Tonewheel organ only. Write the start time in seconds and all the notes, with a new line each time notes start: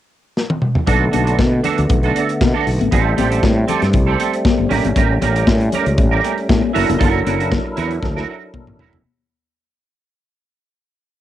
0.87 D3 A3 B3
2.92 G3 C4
4.70 A3 C#4
6.74 F#3 D4 E4 A4 A#4